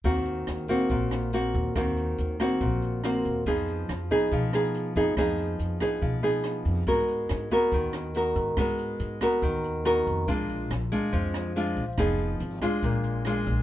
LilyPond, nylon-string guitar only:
\new Staff \with { instrumentName = "Nylon-string guitar" } { \time 4/4 \key ees \minor \tempo 4 = 141 << { <bes c' ges'>4. <bes c' ges'>4. <bes c' ges'>4 | <bes c' ges'>4. <bes c' ges'>4. <bes c' ges'>4 | <ces' ees' aes'>4 r8 <ces' ees' aes'>4 <ces' ees' aes'>4 <ces' ees' aes'>8 | <ces' ees' aes'>4. <ces' ees' aes'>4 <ces' ees' aes'>4. |
<ces' ges' bes'>4. <ces' ges' bes'>4. <ces' ges' bes'>4 | <ces' ges' bes'>4. <ces' ges' bes'>4. <ces' ges' bes'>4 | <aes d' f'>4 r8 <aes d' f'>4. <aes d' f'>8 r8 | <ces' ees' aes'>4 r8 <aes d' f'>4. <aes d' f'>4 | } \\ { ees2 bes,2 | ees2 bes,2 | f2 f2 | f2 f2 |
aes2 ees2 | aes2 ees2 | bes,2 f2 | f2 bes,2 | } >> }